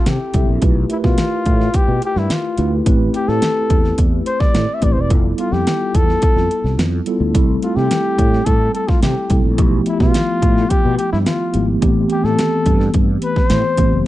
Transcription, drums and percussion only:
0.06 snare loud
0.06 closed hi-hat medium
0.34 kick medium
0.34 closed hi-hat medium
0.62 kick medium
0.62 closed hi-hat medium
0.90 closed hi-hat medium
1.04 kick medium
1.04 snare soft
1.18 snare loud
1.18 closed hi-hat medium
1.46 kick medium
1.46 closed hi-hat medium
1.60 snare soft
1.74 kick medium
1.74 closed hi-hat medium
2.02 closed hi-hat medium
2.17 snare soft
2.30 snare loud
2.30 closed hi-hat medium
2.58 closed hi-hat medium
2.86 kick medium
2.86 closed hi-hat medium
3.14 closed hi-hat medium
3.29 snare soft
3.42 snare loud
3.42 closed hi-hat medium
3.70 kick medium
3.70 closed hi-hat medium
3.84 snare soft
3.98 kick medium
3.98 closed hi-hat medium
4.26 closed hi-hat medium
4.40 kick medium
4.40 snare soft
4.55 snare loud
4.55 closed hi-hat medium
4.82 kick medium
4.82 closed hi-hat medium
5.10 kick medium
5.10 closed hi-hat medium
5.38 closed hi-hat medium
5.53 snare soft
5.67 snare loud
5.67 closed hi-hat medium
5.94 kick medium
5.94 closed hi-hat medium
6.09 snare soft
6.22 kick medium
6.22 closed hi-hat medium
6.37 snare soft
6.51 closed hi-hat medium
6.66 snare soft
6.79 snare loud
6.79 closed hi-hat medium
7.06 closed hi-hat medium
7.35 kick medium
7.35 closed hi-hat medium
7.62 closed hi-hat medium
7.78 snare soft
7.91 snare loud
7.91 closed hi-hat medium
8.19 kick medium
8.19 closed hi-hat medium
8.33 snare soft
8.46 kick medium
8.46 closed hi-hat medium
8.75 closed hi-hat medium
8.89 kick medium
8.89 snare soft
9.03 snare loud
9.03 closed hi-hat medium
9.30 kick medium
9.30 closed hi-hat medium
9.58 kick loud
9.58 closed hi-hat medium
9.86 closed hi-hat medium
10.00 kick medium
10.00 snare soft
10.14 snare loud
10.14 closed hi-hat medium
10.42 kick medium
10.42 closed hi-hat medium
10.57 snare soft
10.70 kick medium
10.70 closed hi-hat medium
10.99 closed hi-hat medium
11.13 snare soft
11.26 snare loud
11.26 closed hi-hat medium
11.54 closed hi-hat medium
11.82 kick medium
11.82 closed hi-hat medium
12.10 closed hi-hat medium
12.25 snare soft
12.39 snare loud
12.39 closed hi-hat medium
12.66 kick medium
12.66 closed hi-hat medium
12.80 snare soft
12.94 kick medium
12.94 closed hi-hat medium
13.22 closed hi-hat medium
13.36 kick medium
13.36 snare soft
13.50 snare loud
13.50 closed hi-hat medium
13.77 kick medium
13.77 closed hi-hat medium

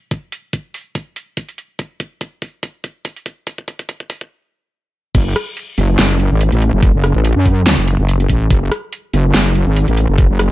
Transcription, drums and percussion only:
0.11 kick loud
0.11 closed hi-hat medium
0.32 closed hi-hat medium
0.53 kick loud
0.53 closed hi-hat medium
0.74 open hi-hat medium
0.95 kick loud
0.95 closed hi-hat medium
1.16 closed hi-hat medium
1.37 kick loud
1.37 closed hi-hat medium
1.49 closed hi-hat soft
1.58 closed hi-hat medium
1.79 kick loud
1.79 closed hi-hat medium
2.00 kick loud
2.00 closed hi-hat medium
2.21 kick loud
2.21 closed hi-hat medium
2.42 kick loud
2.42 open hi-hat loud
2.63 kick loud
2.63 closed hi-hat medium
2.84 kick loud
2.84 closed hi-hat medium
3.05 kick loud
3.05 closed hi-hat medium
3.16 closed hi-hat soft
3.26 kick loud
3.26 closed hi-hat medium
3.47 kick loud
3.47 closed hi-hat medium
3.58 kick medium
3.68 kick loud
3.68 closed hi-hat medium
3.79 kick medium
3.79 closed hi-hat soft
3.89 kick loud
3.89 closed hi-hat medium
4.00 kick medium
4.10 kick loud
4.10 open hi-hat loud
4.21 kick medium
5.15 kick loud
5.15 closed hi-hat medium
5.15 crash loud
5.36 cross-stick medium
5.36 closed hi-hat medium
5.57 closed hi-hat medium
5.78 open hi-hat loud
5.99 snare loud
5.99 closed hi-hat medium
6.20 closed hi-hat medium
6.41 closed hi-hat medium
6.52 closed hi-hat soft
6.62 closed hi-hat medium
6.83 kick loud
6.83 closed hi-hat medium
7.04 cross-stick medium
7.04 closed hi-hat medium
7.25 closed hi-hat medium
7.46 kick medium
7.46 open hi-hat medium
7.67 snare loud
7.67 closed hi-hat medium
7.88 closed hi-hat medium
8.09 closed hi-hat medium
8.20 closed hi-hat soft
8.30 kick medium
8.30 closed hi-hat medium
8.51 kick loud
8.51 closed hi-hat medium
8.72 cross-stick medium
8.72 closed hi-hat medium
8.93 closed hi-hat medium
9.13 open hi-hat medium
9.34 snare loud
9.34 closed hi-hat medium
9.55 closed hi-hat medium
9.76 closed hi-hat medium
9.88 closed hi-hat soft
9.97 closed hi-hat medium
10.18 kick loud
10.18 closed hi-hat medium
10.39 cross-stick medium
10.39 closed hi-hat medium

